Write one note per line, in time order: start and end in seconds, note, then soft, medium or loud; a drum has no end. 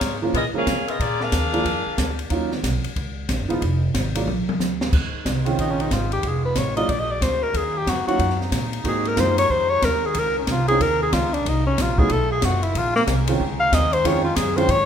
0.00 0.33 G#2 medium
0.00 0.20 A#3 medium
0.00 0.20 F4 medium
0.00 0.20 G#4 medium
0.00 0.20 C#5 loud
0.00 kick soft
0.00 snare medium
0.00 hi-hat pedal soft
0.00 ride medium
0.22 0.33 F3 medium
0.22 0.33 G#3 medium
0.22 0.33 A#3 medium
0.22 0.33 C#4 medium
0.22 0.33 F4 medium
0.34 0.52 A#2 medium
0.34 0.44 B3 medium
0.34 0.44 F4 medium
0.34 0.44 G#4 medium
0.34 0.44 D#5 medium
0.34 kick soft
0.34 ride medium
0.53 0.65 F3 medium
0.53 0.65 G#3 medium
0.53 0.65 A#3 medium
0.53 0.65 C#4 medium
0.53 0.86 C#4 medium
0.53 0.66 F4 medium
0.53 0.86 F5 medium
0.53 muted upright bass stroke soft
0.57 0.86 G#4 medium
0.57 0.87 A#4 medium
0.66 0.98 C#3 medium
0.66 kick soft
0.66 snare medium
0.66 hi-hat pedal medium
0.66 ride medium
0.88 1.00 B3 medium
0.88 0.99 F4 medium
0.88 0.99 G#4 medium
0.88 1.00 D#5 medium
0.88 ride soft
1.00 1.31 A#2 medium
1.00 1.20 A#3 medium
1.00 1.21 F4 medium
1.00 1.19 G#4 medium
1.00 1.21 D5 medium
1.00 kick soft
1.00 ride medium
1.21 2.19 D4 medium
1.21 2.19 G#4 medium
1.21 2.19 A#4 medium
1.21 2.19 F5 loud
1.21 snare soft
1.32 1.64 D#2 medium
1.32 kick soft
1.32 snare medium
1.32 hi-hat pedal medium
1.32 ride medium
1.53 1.64 F3 medium
1.53 1.64 G#3 medium
1.53 1.64 A#3 medium
1.53 1.64 D4 medium
1.53 1.64 F4 medium
1.53 ride soft
1.65 1.84 F2 medium
1.65 kick soft
1.65 ride medium
1.86 muted upright bass stroke soft
1.98 2.29 D2 medium
1.98 kick soft
1.98 snare medium
1.98 hi-hat pedal medium
1.98 ride medium
2.19 ride medium
2.30 2.62 D#2 medium
2.30 2.49 F#3 medium
2.30 2.49 A#3 medium
2.30 2.49 C#4 medium
2.30 2.49 D#4 medium
2.30 2.50 F4 medium
2.30 kick soft
2.30 ride medium
2.52 snare soft
2.63 2.83 B1 medium
2.63 kick soft
2.63 snare medium
2.63 hi-hat pedal medium
2.63 ride medium
2.84 muted upright bass stroke soft
2.84 ride medium
2.96 3.28 C#2 medium
2.96 kick soft
2.96 ride medium
3.29 3.40 A#1 medium
3.29 kick soft
3.29 snare medium
3.29 hi-hat pedal medium
3.29 ride medium
3.40 3.50 F#1 medium
3.48 3.61 D#1 medium
3.48 3.60 F3 medium
3.48 3.60 G#3 medium
3.48 3.60 B3 medium
3.48 3.60 D#4 medium
3.48 3.61 F4 medium
3.48 ride soft
3.61 3.93 F1 medium
3.61 kick soft
3.61 ride medium
3.94 4.26 G#1 medium
3.94 kick soft
3.94 snare medium
3.94 hi-hat pedal medium
3.94 ride medium
4.15 4.26 F#3 medium
4.15 4.26 G#3 medium
4.15 4.26 A#3 medium
4.15 4.26 D4 medium
4.15 4.26 F4 medium
4.15 ride medium
4.27 4.46 A#1 medium
4.27 mid tom medium
4.48 muted upright bass stroke soft
4.48 mid tom medium
4.59 4.91 D2 medium
4.59 snare medium
4.59 hi-hat pedal medium
4.81 snare medium
4.92 5.12 C#2 medium
4.92 6.22 D#3 medium
4.92 7.51 G#3 medium
4.92 6.22 D#4 medium
4.92 6.22 C5 medium
4.92 kick medium
4.92 crash medium
5.13 muted upright bass stroke soft
5.25 5.57 C2 medium
5.25 kick soft
5.25 snare medium
5.25 hi-hat pedal medium
5.25 ride medium
5.45 5.88 D#3 medium
5.45 5.88 G#3 medium
5.45 5.88 C4 medium
5.45 5.89 C#4 medium
5.45 5.89 F4 medium
5.45 ride soft
5.58 5.90 A#1 medium
5.58 5.72 D#4 medium
5.58 kick soft
5.58 ride medium
5.71 5.83 C#4 medium
5.80 5.94 D#4 medium
5.80 ride soft
5.91 6.22 G#1 medium
5.91 6.12 F4 medium
5.91 kick soft
5.91 snare medium
5.91 hi-hat pedal medium
5.91 ride medium
6.12 6.29 G4 medium
6.12 ride soft
6.23 6.55 F1 medium
6.23 6.88 D#3 medium
6.23 6.88 B3 medium
6.23 6.88 F4 medium
6.23 kick soft
6.23 ride medium
6.28 6.45 G#4 medium
6.45 6.60 B4 medium
6.55 6.88 A1 medium
6.55 6.76 C#5 medium
6.55 kick soft
6.55 snare medium
6.55 hi-hat pedal medium
6.55 ride medium
6.76 6.87 F#3 medium
6.76 6.88 G#3 medium
6.76 6.88 A#3 medium
6.76 6.88 D4 medium
6.76 6.88 F4 medium
6.76 6.92 D#5 loud
6.76 ride soft
6.87 7.21 A#1 medium
6.87 7.53 D3 medium
6.87 8.83 A#3 medium
6.87 7.53 F#4 medium
6.87 7.01 D5 medium
6.87 kick soft
6.87 ride medium
7.00 7.13 D#5 medium
7.11 7.24 D5 medium
7.21 7.53 D2 medium
7.21 7.44 C5 medium
7.21 kick soft
7.21 snare medium
7.21 hi-hat pedal medium
7.21 ride medium
7.43 7.59 A#4 medium
7.54 7.86 D#2 medium
7.54 8.84 C#3 medium
7.54 8.83 F#3 medium
7.54 12.06 D#4 medium
7.54 7.79 G#4 medium
7.54 kick soft
7.54 ride medium
7.77 7.91 G4 medium
7.87 8.06 F2 medium
7.87 8.07 F#4 medium
7.87 kick soft
7.87 snare medium
7.87 hi-hat pedal medium
7.87 ride medium
8.07 8.18 F#3 medium
8.07 8.18 A#3 medium
8.07 8.19 C#4 medium
8.07 8.18 D#4 medium
8.07 8.19 F4 medium
8.07 8.38 F#4 loud
8.07 muted upright bass stroke soft
8.07 ride soft
8.19 8.51 F#2 medium
8.19 kick soft
8.19 ride medium
8.30 snare soft
8.41 snare soft
8.52 8.84 A#2 medium
8.52 kick soft
8.52 snare medium
8.52 hi-hat pedal medium
8.52 ride medium
8.73 ride soft
8.84 9.16 G#2 medium
8.84 10.15 C3 medium
8.84 9.15 G#3 medium
8.84 10.15 G#3 medium
8.84 9.16 A#3 medium
8.84 9.16 C4 soft
8.84 9.16 D#4 medium
8.84 9.16 F#4 medium
8.84 10.15 F#4 medium
8.84 kick soft
8.84 ride medium
8.88 9.09 G#4 medium
9.05 9.21 A#4 loud
9.05 ride soft
9.16 9.49 F#2 medium
9.16 9.36 G#3 medium
9.16 9.36 A#3 medium
9.16 9.36 C4 medium
9.16 9.36 D#4 medium
9.16 9.36 F4 medium
9.16 9.38 C5 medium
9.16 kick soft
9.16 snare medium
9.16 hi-hat pedal medium
9.16 ride medium
9.38 9.53 C#5 loud
9.38 ride medium
9.49 9.81 F2 medium
9.49 9.72 C5 medium
9.49 kick soft
9.70 9.86 C#5 loud
9.82 10.14 D#2 medium
9.82 10.07 A#4 medium
9.82 kick soft
9.82 snare medium
9.82 hi-hat pedal medium
9.82 ride medium
10.06 10.21 G#4 medium
10.15 10.46 C#2 medium
10.15 11.44 F3 medium
10.15 11.44 C4 medium
10.15 11.44 C#4 medium
10.15 kick soft
10.15 ride medium
10.19 10.38 A#4 medium
10.39 10.53 C#4 medium
10.47 10.79 C2 medium
10.47 kick soft
10.47 snare medium
10.47 hi-hat pedal medium
10.47 ride medium
10.52 10.67 F4 medium
10.68 10.79 G#3 medium
10.68 10.79 C4 medium
10.68 10.80 C#4 medium
10.68 10.80 D#4 medium
10.68 10.80 F4 medium
10.68 10.83 G#4 loud
10.68 ride soft
10.80 11.12 D#2 medium
10.80 11.02 A#4 loud
10.80 kick soft
10.80 ride medium
11.02 11.15 G#4 medium
11.13 11.44 C#2 medium
11.13 11.35 F4 medium
11.13 kick soft
11.13 snare medium
11.13 hi-hat pedal medium
11.13 ride medium
11.33 11.50 D4 medium
11.33 ride soft
11.45 11.77 C2 medium
11.45 12.10 C3 medium
11.45 12.10 F#3 medium
11.45 12.10 A#3 medium
11.45 11.66 D#4 medium
11.45 kick soft
11.45 ride medium
11.67 11.83 C#4 medium
11.77 12.09 A#1 medium
11.77 kick soft
11.77 snare medium
11.77 hi-hat pedal medium
11.77 ride medium
11.81 12.00 F4 medium
11.98 12.09 F#3 medium
11.98 12.09 A3 medium
11.98 12.09 B3 medium
11.98 12.09 D#4 medium
11.98 12.09 F4 medium
11.98 12.13 G#4 loud
11.98 kick medium
12.10 12.41 B1 medium
12.10 12.75 D#3 medium
12.10 12.74 A3 medium
12.10 12.74 B3 medium
12.10 12.75 F4 medium
12.10 12.32 A4 loud
12.10 kick soft
12.10 ride medium
12.32 12.46 G#4 medium
12.42 12.74 F#1 loud
12.42 12.65 F#4 medium
12.42 kick soft
12.42 snare medium
12.42 hi-hat pedal medium
12.42 ride medium
12.63 12.79 E4 medium
12.63 ride medium
12.75 13.06 A#1 medium
12.75 14.86 G#3 medium
12.75 14.86 C4 medium
12.75 14.86 C#4 medium
12.75 14.86 D#4 medium
12.75 12.95 F4 medium
12.75 kick soft
12.75 ride medium
12.96 13.03 A#3 loud
12.96 snare medium
13.07 13.39 C2 medium
13.07 kick soft
13.07 snare medium
13.07 hi-hat pedal medium
13.07 ride medium
13.27 13.39 D#3 medium
13.27 13.39 G#3 medium
13.27 13.39 C4 medium
13.27 13.39 C#4 medium
13.27 13.39 F4 medium
13.27 ride medium
13.40 13.71 C#2 medium
13.40 kick soft
13.60 13.76 F5 loud
13.72 14.03 D#2 loud
13.72 13.95 D#5 loud
13.72 kick soft
13.72 snare medium
13.72 hi-hat pedal medium
13.72 ride medium
13.93 14.09 C5 loud
13.93 ride medium
14.04 14.35 F2 medium
14.04 14.23 D#3 medium
14.04 14.23 G#3 medium
14.04 14.23 C4 medium
14.04 14.23 C#4 medium
14.04 14.23 F4 medium
14.04 14.24 C#5 medium
14.04 kick soft
14.04 ride medium
14.24 14.38 F4 medium
14.36 14.68 F#2 medium
14.36 14.58 G#4 medium
14.36 kick soft
14.36 snare medium
14.36 hi-hat pedal medium
14.36 ride medium
14.56 14.67 D#3 medium
14.56 14.67 G#3 medium
14.56 14.67 C4 medium
14.56 14.67 C#4 medium
14.56 14.68 F4 medium
14.56 14.73 C5 loud
14.56 ride medium
14.68 14.86 G#2 medium
14.68 14.86 C#5 loud
14.68 kick soft
14.68 ride medium